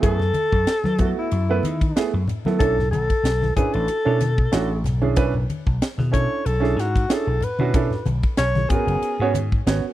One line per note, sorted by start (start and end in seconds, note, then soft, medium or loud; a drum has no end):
0.02 0.31 F#2 medium
0.02 0.17 A3 medium
0.02 0.17 B3 medium
0.02 0.18 E4 medium
0.02 0.18 G#4 medium
0.02 1.13 A4 loud
0.02 kick loud
0.02 hi-hat pedal medium
0.02 ride medium
0.20 0.27 E4 soft
0.20 0.28 B4 soft
0.20 snare soft
0.20 low conga medium
0.34 hi-hat pedal medium
0.34 ride medium
0.34 high conga medium
0.52 0.65 F#2 medium
0.52 kick medium
0.67 snare loud
0.67 hi-hat pedal medium
0.67 ride medium
0.84 1.12 F#3 medium
0.84 0.91 E4 soft
0.84 0.92 B4 soft
0.84 snare soft
0.84 high conga medium
0.98 1.27 A3 medium
0.98 1.27 B3 medium
0.98 1.28 E4 medium
0.98 1.28 F#4 medium
0.98 kick medium
0.98 hi-hat pedal medium
0.98 ride medium
0.98 low conga medium
1.18 2.10 E4 medium
1.31 1.59 F#2 medium
1.31 1.40 E4 soft
1.31 1.40 F#4 soft
1.31 hi-hat pedal medium
1.31 ride medium
1.49 1.62 A3 medium
1.49 1.62 B3 medium
1.49 1.62 E4 medium
1.49 1.62 B4 medium
1.63 1.92 D#3 medium
1.63 1.72 E4 soft
1.63 1.73 G#4 soft
1.63 hi-hat pedal medium
1.63 ride medium
1.63 high conga medium
1.81 kick medium
1.81 ride medium
1.96 2.11 A3 medium
1.96 2.11 B3 medium
1.96 2.11 E4 medium
1.96 2.12 G#4 medium
1.96 snare loud
1.96 hi-hat pedal medium
1.96 ride medium
2.14 2.26 F#2 medium
2.14 2.21 E4 soft
2.14 2.21 G#4 soft
2.28 hi-hat pedal medium
2.28 ride medium
2.28 low conga medium
2.45 2.58 F#3 medium
2.45 2.58 A3 medium
2.45 2.58 B3 medium
2.45 2.59 E4 medium
2.45 2.59 A4 medium
2.45 snare soft
2.45 high conga medium
2.59 2.87 B1 medium
2.59 2.75 C#4 medium
2.59 2.75 D4 medium
2.59 2.76 E4 medium
2.59 2.89 A4 loud
2.59 2.76 A4 medium
2.59 kick loud
2.59 hi-hat pedal medium
2.59 ride medium
2.78 2.85 E4 soft
2.78 2.85 A4 soft
2.78 snare soft
2.78 low conga medium
2.91 3.07 B1 medium
2.91 3.52 A4 loud
2.91 hi-hat pedal medium
2.91 ride medium
2.91 high conga medium
3.10 kick medium
3.10 ride medium
3.23 3.51 B1 medium
3.23 snare medium
3.23 hi-hat pedal medium
3.23 ride medium
3.42 3.49 E4 soft
3.42 3.49 B4 soft
3.42 snare soft
3.42 high conga medium
3.56 3.85 C#4 medium
3.56 3.85 D4 medium
3.56 3.85 E4 medium
3.56 3.75 G#4 medium
3.56 3.85 B4 medium
3.56 muted slap bass stroke soft
3.56 kick medium
3.56 hi-hat pedal medium
3.56 ride medium
3.56 low conga medium
3.74 3.87 A1 medium
3.74 4.85 A4 medium
3.74 ride medium
3.88 3.97 E4 soft
3.88 3.97 F#4 soft
3.88 muted slap bass stroke soft
3.88 hi-hat pedal medium
3.88 ride medium
4.05 4.46 B2 medium
4.05 4.18 C#4 medium
4.05 4.18 D4 medium
4.05 4.19 E4 medium
4.05 4.19 A4 medium
4.20 4.29 E4 soft
4.20 4.30 A4 soft
4.20 snare soft
4.20 hi-hat pedal medium
4.20 ride medium
4.20 high conga medium
4.38 kick medium
4.52 4.82 A1 medium
4.52 4.67 C#4 medium
4.52 4.68 D4 medium
4.52 4.68 E4 medium
4.52 4.68 F#4 medium
4.52 snare loud
4.52 hi-hat pedal medium
4.52 ride medium
4.70 4.77 E4 soft
4.70 4.78 G#4 soft
4.84 5.14 B1 medium
4.84 snare soft
4.84 hi-hat pedal medium
4.84 ride medium
4.84 low conga medium
5.02 5.15 C#4 medium
5.02 5.15 D4 medium
5.02 5.15 E4 medium
5.02 5.15 G#4 medium
5.02 high conga medium
5.16 5.45 B1 medium
5.16 5.32 C#4 loud
5.16 5.32 D4 medium
5.16 5.32 E4 medium
5.16 5.32 B4 loud
5.16 kick loud
5.16 hi-hat pedal medium
5.16 ride medium
5.34 5.41 E4 soft
5.34 low conga medium
5.50 hi-hat pedal medium
5.50 ride medium
5.50 high conga medium
5.66 5.79 B1 medium
5.66 kick medium
5.82 snare loud
5.82 hi-hat pedal medium
5.82 ride medium
5.98 6.26 B2 medium
5.98 6.06 E4 soft
5.98 6.06 G#4 soft
5.98 snare soft
5.98 high conga medium
6.11 6.41 C#4 medium
6.11 6.41 D4 medium
6.11 6.41 E4 medium
6.11 6.41 A4 medium
6.11 6.48 C#5 medium
6.11 kick medium
6.11 hi-hat pedal medium
6.11 ride medium
6.44 6.73 B1 medium
6.44 6.53 E4 soft
6.44 6.54 G#4 soft
6.44 6.82 A4 medium
6.44 hi-hat pedal medium
6.44 ride medium
6.60 6.74 C#4 medium
6.60 6.75 D4 medium
6.60 6.75 E4 medium
6.60 6.75 G#4 medium
6.60 snare soft
6.76 7.04 G#2 medium
6.76 6.86 E4 soft
6.76 7.15 F#4 medium
6.76 6.86 G#4 soft
6.76 snare soft
6.76 hi-hat pedal medium
6.76 ride medium
6.96 kick medium
6.96 ride medium
7.09 7.25 C#4 medium
7.09 7.25 D4 medium
7.09 7.25 E4 medium
7.09 7.26 G#4 medium
7.09 snare loud
7.09 hi-hat pedal medium
7.09 ride medium
7.14 7.45 A4 medium
7.27 7.40 B1 medium
7.27 7.34 E4 soft
7.27 7.35 G#4 soft
7.41 8.07 B4 medium
7.41 hi-hat pedal medium
7.41 ride medium
7.41 low conga medium
7.59 7.87 B2 medium
7.59 7.72 C#4 medium
7.59 7.72 D4 medium
7.59 7.73 E4 medium
7.59 7.73 F#4 medium
7.59 high conga medium
7.74 7.89 C#4 medium
7.74 7.90 D4 medium
7.74 7.90 E4 medium
7.74 7.90 A4 medium
7.74 kick loud
7.74 hi-hat pedal medium
7.74 ride medium
7.91 7.99 E4 soft
7.91 8.00 F#4 soft
7.91 snare soft
7.91 low conga medium
8.06 8.21 B1 medium
8.06 hi-hat pedal medium
8.06 ride medium
8.06 high conga medium
8.23 kick medium
8.23 ride soft
8.37 8.66 B1 medium
8.37 8.71 C#5 loud
8.37 snare loud
8.37 hi-hat pedal medium
8.37 ride medium
8.55 8.63 E4 soft
8.55 8.64 G#4 soft
8.55 snare soft
8.55 high conga medium
8.70 9.14 B3 medium
8.70 9.14 C#4 medium
8.70 9.14 F#4 medium
8.70 9.34 G#4 medium
8.70 9.14 A#4 medium
8.70 kick loud
8.70 hi-hat pedal medium
8.70 ride medium
8.70 low conga medium
8.87 9.00 F#1 medium
8.87 ride medium
9.01 muted slap bass stroke soft
9.01 hi-hat pedal medium
9.01 ride medium
9.20 9.60 G#2 medium
9.20 9.33 B3 medium
9.20 9.33 C#4 medium
9.20 9.33 F#4 medium
9.20 9.34 C#5 medium
9.34 9.44 F#4 soft
9.34 9.44 G#4 soft
9.34 hi-hat pedal medium
9.34 ride medium
9.34 high conga medium
9.52 kick medium
9.66 9.81 G#1 medium
9.66 9.82 B3 medium
9.66 9.82 C#4 medium
9.66 9.82 F#4 medium
9.66 9.82 C#5 medium
9.66 snare loud
9.66 hi-hat pedal medium
9.66 ride medium
9.84 9.91 F#4 soft
9.84 9.92 A#4 soft